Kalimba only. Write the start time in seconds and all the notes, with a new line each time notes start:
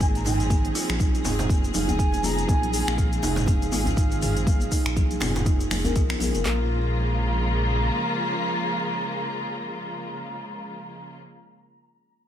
0.01 A#3
0.26 D#4
0.50 G#4
0.75 F4
1.00 D#4
1.25 G#4
1.50 A#3
1.74 D#4
1.99 G#4
2.24 F4
2.49 D#4
2.74 G#4
2.98 A#3
3.23 D#4
3.48 G#4
3.73 F4
3.97 D#4
4.22 G#4
4.47 A#3
4.72 D#4
4.97 G#4
5.21 F4
5.46 D#4
5.71 A#3
5.85 A#4
5.96 F4
6.21 G#4
6.35 A#4
6.45 A#3